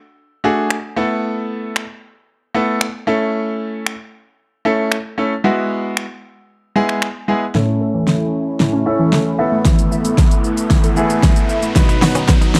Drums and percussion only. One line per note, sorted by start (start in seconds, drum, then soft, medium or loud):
0.70 finger snap loud
1.76 finger snap loud
2.81 finger snap loud
3.87 finger snap loud
4.92 finger snap loud
5.97 finger snap loud
6.89 finger snap medium
7.02 finger snap loud
7.55 snare medium
8.07 snare medium
8.60 snare medium
9.13 snare medium
9.65 kick loud
9.65 snare medium
9.65 closed hi-hat medium
9.65 shaker medium
9.79 closed hi-hat medium
9.79 shaker medium
9.92 shaker soft
10.05 closed hi-hat medium
10.05 shaker medium
10.18 kick loud
10.18 snare medium
10.18 closed hi-hat medium
10.18 shaker medium
10.31 closed hi-hat soft
10.31 shaker soft
10.44 shaker medium
10.57 closed hi-hat medium
10.57 shaker medium
10.71 kick loud
10.71 snare medium
10.71 closed hi-hat medium
10.71 shaker medium
10.84 closed hi-hat medium
10.84 shaker medium
10.97 shaker medium
11.10 closed hi-hat medium
11.10 shaker medium
11.23 kick loud
11.23 snare medium
11.23 closed hi-hat medium
11.23 shaker medium
11.36 closed hi-hat medium
11.36 shaker medium
11.49 shaker medium
11.63 closed hi-hat medium
11.63 shaker medium
11.76 kick loud
11.76 snare medium
11.76 closed hi-hat medium
11.76 shaker medium
11.89 closed hi-hat medium
11.89 shaker medium
12.02 snare medium
12.02 open hi-hat medium
12.02 shaker medium
12.15 closed hi-hat medium
12.15 shaker medium
12.28 kick loud
12.28 snare medium
12.28 clap medium
12.28 closed hi-hat medium
12.28 shaker medium
12.42 closed hi-hat soft
12.42 shaker soft
12.55 snare medium
12.55 open hi-hat medium
12.55 shaker medium